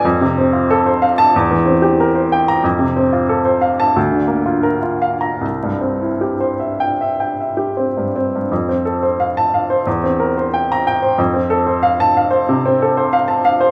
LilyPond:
\new Staff \with { instrumentName = "Upright piano" } { \time 4/4 \key f \major \tempo 4 = 90 << { r4. r16 a''16 r4. r16 bes''16 | r4. r16 a''16 r4. r16 bes''16 | r4. r16 g''8 r4. r16 | r4 r16 a''8 r4. bes''8 r16 |
r4 r16 a''8 r2 r16 | } \\ { f,16 c16 c'16 f'16 a'16 c''16 f''8 e,16 e16 c'16 g'16 bes'16 c''16 g''8 | f,16 c16 c'16 f'16 a'16 c''16 f''8 d,16 d16 bes16 f'16 bes'16 f'16 f''8 | c,16 g,16 c'16 e'16 g'16 c''16 e''8 e''16 g''16 e''16 g'16 c'16 g,16 c'16 g,16 | f,16 c'16 a'16 c''16 f''8 f''16 c''16 e,16 c'16 bes'16 c''16 g''8 g''16 c''16 |
f,16 c'16 a'16 c''16 f''8 f''16 c''16 c16 c'16 a'16 c''16 f''16 a''16 f''16 c''16 | } >> }